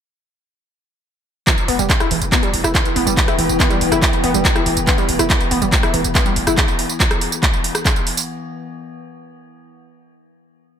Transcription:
1.47 8.32 E3 medium
1.47 1.54 E3 medium
1.47 8.32 B3 medium
1.47 6.58 E4 medium
1.47 kick loud
1.47 clap loud
1.47 closed hi-hat medium
1.47 tambourine soft
1.58 closed hi-hat medium
1.58 tambourine soft
1.68 1.78 E1 loud
1.68 1.75 B3 loud
1.68 6.58 B4 medium
1.68 open hi-hat loud
1.79 1.89 E1 medium
1.79 1.86 G3 loud
1.79 closed hi-hat medium
1.79 tambourine medium
1.85 6.58 G5 medium
1.90 kick loud
1.90 clap loud
1.90 closed hi-hat medium
1.90 tambourine medium
2.00 2.07 E4 loud
2.00 cross-stick medium
2.00 closed hi-hat medium
2.00 tambourine soft
2.11 2.21 E1 loud
2.11 2.18 E3 medium
2.11 open hi-hat loud
2.21 2.32 E1 medium
2.21 closed hi-hat medium
2.21 tambourine medium
2.32 2.39 B3 loud
2.32 kick loud
2.32 clap loud
2.32 closed hi-hat medium
2.32 tambourine medium
2.43 2.50 G3 loud
2.43 closed hi-hat medium
2.43 tambourine soft
2.53 2.63 E1 medium
2.53 open hi-hat loud
2.64 2.74 E1 medium
2.64 2.71 E4 medium
2.64 cross-stick medium
2.64 closed hi-hat medium
2.64 tambourine medium
2.75 2.81 E3 medium
2.75 kick loud
2.75 clap loud
2.75 closed hi-hat medium
2.75 tambourine medium
2.85 closed hi-hat medium
2.85 tambourine soft
2.96 3.06 E1 loud
2.96 3.03 B3 loud
2.96 open hi-hat loud
3.07 3.17 E1 medium
3.07 3.13 G3 loud
3.07 closed hi-hat medium
3.07 tambourine medium
3.17 kick loud
3.17 clap loud
3.17 closed hi-hat medium
3.17 tambourine medium
3.28 3.35 E4 loud
3.28 cross-stick medium
3.28 closed hi-hat medium
3.28 tambourine soft
3.38 3.48 E1 loud
3.38 3.45 E3 medium
3.38 open hi-hat loud
3.49 3.60 E1 medium
3.49 closed hi-hat medium
3.49 tambourine medium
3.60 3.67 B3 loud
3.60 kick loud
3.60 clap loud
3.60 closed hi-hat medium
3.60 tambourine medium
3.70 3.77 G3 loud
3.70 closed hi-hat medium
3.70 tambourine soft
3.81 3.91 E1 loud
3.81 open hi-hat loud
3.92 4.02 E1 medium
3.92 3.99 E4 loud
3.92 cross-stick medium
3.92 closed hi-hat medium
3.92 tambourine medium
4.02 4.09 E3 medium
4.02 kick loud
4.02 clap loud
4.02 closed hi-hat medium
4.02 tambourine medium
4.13 closed hi-hat medium
4.13 tambourine soft
4.23 4.33 E1 loud
4.23 4.30 B3 loud
4.23 open hi-hat loud
4.34 4.45 E1 medium
4.34 4.41 G3 medium
4.34 closed hi-hat medium
4.34 tambourine medium
4.45 kick loud
4.45 clap loud
4.45 closed hi-hat medium
4.45 tambourine medium
4.55 4.62 E4 loud
4.55 cross-stick medium
4.55 closed hi-hat medium
4.55 tambourine soft
4.66 4.76 E1 loud
4.66 4.73 E3 medium
4.66 open hi-hat loud
4.77 4.87 E1 medium
4.77 closed hi-hat medium
4.77 tambourine medium
4.87 4.94 B3 loud
4.87 kick loud
4.87 clap loud
4.87 closed hi-hat medium
4.87 tambourine medium
4.98 5.05 G3 loud
4.98 closed hi-hat medium
4.98 tambourine soft
5.09 5.19 E1 medium
5.09 open hi-hat loud
5.19 5.30 E1 medium
5.19 5.26 E4 loud
5.19 cross-stick medium
5.19 closed hi-hat medium
5.19 tambourine medium
5.30 5.37 E3 medium
5.30 kick loud
5.30 clap loud
5.30 closed hi-hat medium
5.30 tambourine medium
5.41 closed hi-hat medium
5.41 tambourine soft
5.51 5.61 E1 loud
5.51 5.58 B3 loud
5.51 open hi-hat loud
5.62 5.72 E1 medium
5.62 5.69 G3 loud
5.62 closed hi-hat medium
5.62 tambourine medium
5.72 kick loud
5.72 clap loud
5.72 closed hi-hat medium
5.72 tambourine medium
5.83 5.90 E4 loud
5.83 cross-stick loud
5.83 closed hi-hat medium
5.83 tambourine soft
5.94 6.04 E1 loud
5.94 6.01 E3 medium
5.94 open hi-hat loud
6.04 6.15 E1 medium
6.04 closed hi-hat medium
6.04 tambourine medium
6.15 6.22 B3 loud
6.15 kick loud
6.15 clap loud
6.15 closed hi-hat medium
6.15 tambourine medium
6.26 6.33 G3 loud
6.26 closed hi-hat medium
6.26 tambourine soft
6.36 6.46 E1 loud
6.36 open hi-hat loud
6.47 6.57 E1 medium
6.47 6.54 E4 loud
6.47 cross-stick loud
6.47 closed hi-hat medium
6.47 tambourine medium
6.58 kick loud
6.58 clap loud
6.58 closed hi-hat medium
6.58 tambourine medium
6.68 closed hi-hat medium
6.68 tambourine soft
6.79 open hi-hat loud
6.89 closed hi-hat medium
6.89 tambourine medium
7.00 kick loud
7.00 clap loud
7.00 closed hi-hat medium
7.00 tambourine medium
7.11 cross-stick loud
7.11 closed hi-hat medium
7.11 tambourine soft
7.21 open hi-hat loud
7.32 closed hi-hat soft
7.32 tambourine medium
7.43 kick loud
7.43 clap loud
7.43 closed hi-hat medium
7.43 tambourine medium
7.53 closed hi-hat medium
7.53 tambourine soft
7.64 open hi-hat loud
7.75 cross-stick loud
7.75 closed hi-hat medium
7.75 tambourine medium
7.85 kick loud
7.85 clap loud
7.85 closed hi-hat medium
7.85 tambourine medium
7.96 closed hi-hat medium
7.96 tambourine soft
8.07 open hi-hat loud
8.17 open hi-hat medium
8.17 tambourine medium

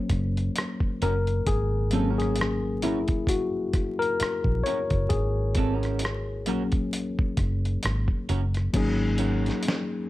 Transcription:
0.00 1.92 F#3 soft
0.00 1.93 A#3 soft
0.00 1.93 C#4 soft
0.09 0.48 F#1 medium
0.09 kick medium
0.09 cross-stick soft
0.09 closed hi-hat medium
0.37 closed hi-hat soft
0.56 cross-stick loud
0.56 closed hi-hat medium
0.80 kick medium
1.02 1.39 F#1 medium
1.02 1.13 C#4 medium
1.02 1.14 F#4 medium
1.02 1.23 A#4 medium
1.02 1.14 A#4 medium
1.02 closed hi-hat medium
1.27 closed hi-hat soft
1.46 4.16 G#1 loud
1.46 2.17 G#4 medium
1.46 kick loud
1.46 closed hi-hat medium
1.91 3.24 F#3 soft
1.91 3.25 A#3 soft
1.91 2.10 C4 medium
1.91 3.25 C#4 medium
1.91 2.11 F4 medium
1.91 2.10 A4 medium
1.91 closed hi-hat medium
2.10 2.35 C#4 medium
2.10 2.35 F#4 medium
2.10 2.35 A#4 medium
2.18 2.85 G#4 medium
2.18 cross-stick soft
2.18 closed hi-hat soft
2.36 muted clean electric guitar stroke soft
2.36 closed hi-hat medium
2.41 cross-stick loud
2.82 2.98 C#4 medium
2.82 3.30 E4 medium
2.82 2.98 F#4 medium
2.82 2.99 A#4 medium
2.82 closed hi-hat medium
3.08 kick medium
3.08 closed hi-hat soft
3.27 4.02 F#4 medium
3.27 kick medium
3.27 closed hi-hat medium
3.73 kick medium
3.73 cross-stick soft
3.73 closed hi-hat medium
3.99 4.66 A#4 medium
3.99 closed hi-hat soft
4.20 muted fingered electric bass stroke soft
4.20 cross-stick medium
4.20 closed hi-hat medium
4.44 4.61 A#1 medium
4.44 kick medium
4.64 4.77 C#4 medium
4.64 4.77 F#4 medium
4.64 5.11 C#5 medium
4.64 closed hi-hat medium
4.68 4.78 A#4 medium
4.90 5.07 F#1 medium
4.90 kick medium
4.90 closed hi-hat soft
5.09 6.48 G#1 medium
5.09 6.88 G#4 medium
5.09 kick loud
5.09 closed hi-hat medium
5.55 5.74 C4 medium
5.55 5.75 F4 medium
5.55 5.76 A4 medium
5.55 kick medium
5.55 closed hi-hat medium
5.74 5.99 C#4 medium
5.74 5.99 F#4 medium
5.74 5.99 A#4 medium
5.83 cross-stick soft
5.83 closed hi-hat soft
5.99 muted clean electric guitar stroke soft
5.99 closed hi-hat medium
6.05 cross-stick loud
6.46 7.23 A#1 medium
6.46 7.10 F#3 soft
6.46 7.10 A#3 soft
6.46 6.62 C#4 medium
6.46 7.10 C#4 medium
6.46 6.62 F#4 medium
6.46 6.62 A#4 medium
6.46 closed hi-hat medium
6.72 kick medium
6.72 closed hi-hat soft
6.93 closed hi-hat loud
7.19 kick medium
7.37 7.75 F#1 medium
7.37 kick medium
7.37 cross-stick soft
7.37 closed hi-hat medium
7.65 closed hi-hat soft
7.83 8.06 G#1 medium
7.83 cross-stick medium
7.83 closed hi-hat medium
8.08 kick medium
8.29 8.67 F#1 medium
8.29 8.40 C#4 medium
8.29 8.40 F#4 medium
8.29 8.41 A#4 medium
8.29 closed hi-hat medium
8.54 cross-stick soft
8.54 closed hi-hat soft
8.73 9.50 G#1 medium
8.73 10.10 F#3 medium
8.73 10.10 A#3 medium
8.73 10.10 C#4 medium
8.73 10.10 D#4 medium
8.73 10.10 G#4 medium
8.73 kick loud
8.73 closed hi-hat medium
8.73 crash medium
9.18 9.61 C#4 medium
9.18 9.62 F#4 medium
9.18 9.62 A#4 medium
9.18 closed hi-hat medium
9.46 snare soft
9.46 closed hi-hat soft
9.63 muted clean electric guitar stroke soft
9.63 closed hi-hat medium
9.68 snare loud

